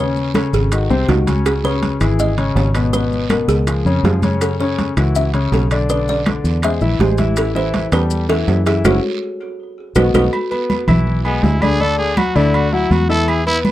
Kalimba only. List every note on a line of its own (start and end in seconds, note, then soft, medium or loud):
0.00 0.32 B4 medium
0.35 0.43 A4 medium
0.54 1.11 G#4 medium
1.09 1.43 F#4 medium
1.46 1.54 G#4 loud
1.65 1.99 B4 loud
2.20 2.54 D#5 medium
2.57 2.95 C#5 medium
2.93 3.31 B4 loud
3.30 3.49 A#4 medium
3.49 4.00 G#4 medium
4.05 4.43 G#4 medium
4.42 4.50 A4 loud
4.60 4.95 C#5 medium
5.16 5.50 E5 loud
5.54 5.91 A4 medium
5.90 5.98 B4 medium
6.09 6.43 D5 loud
6.64 7.02 E5 loud
7.01 7.35 G4 medium
7.38 7.46 A4 loud
7.56 7.90 C5 medium
7.93 8.27 B4 loud
8.30 8.68 A4 loud
8.67 8.84 G#4 medium
8.85 8.97 F#4 medium
8.85 8.97 A4 medium
8.85 8.97 C#5 loud
9.96 10.08 F#4 medium
9.96 10.08 A4 medium
9.96 10.08 B4 medium
10.15 10.26 F#4 medium
10.15 10.26 A4 loud
10.15 10.26 B4 loud